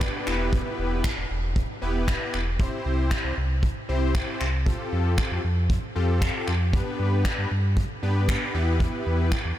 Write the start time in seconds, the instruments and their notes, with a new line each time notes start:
Already playing: analog polysynth B3 D4 G4 B4, downlifter
0.01 finger snap, kick
0.27 sub bass E1, analog polysynth B3 E4 G4 B4, finger snap
0.53 kick
0.79 sub bass E1
1.04 finger snap, kick
1.17 sub bass E1
1.30 sub bass E1
1.56 kick
1.82 sub bass E1, analog polysynth B3 E4 G4 B4
2.08 finger snap, kick
2.34 sub bass E1, finger snap
2.59 analog polysynth C4 E4 G4 C5, kick
2.85 sub bass C2
3.11 finger snap, kick
3.24 sub bass C2
3.37 sub bass C2
3.63 kick
3.89 sub bass C2, analog polysynth C4 E4 G4 C5
4.15 finger snap, kick
4.41 sub bass C2, finger snap
4.66 analog polysynth C4 F4 G4 A4, kick
4.92 sub bass F2
5.18 finger snap, kick
5.31 sub bass F2
5.44 sub bass F2
5.70 kick
5.95 sub bass F2, analog polysynth C4 F4 G4 A4
6.22 finger snap, kick
6.48 sub bass F2, finger snap
6.73 analog polysynth B3 D4 G4 B4, kick
6.99 sub bass G2
7.25 finger snap, kick
7.38 sub bass G2
7.51 sub bass G2
7.77 kick
8.03 sub bass G2, analog polysynth B3 D4 G4 B4
8.29 finger snap, kick
8.54 sub bass E2, analog polysynth B3 E4 G4 B4
8.80 kick
9.06 sub bass E2
9.32 finger snap, kick
9.45 sub bass E2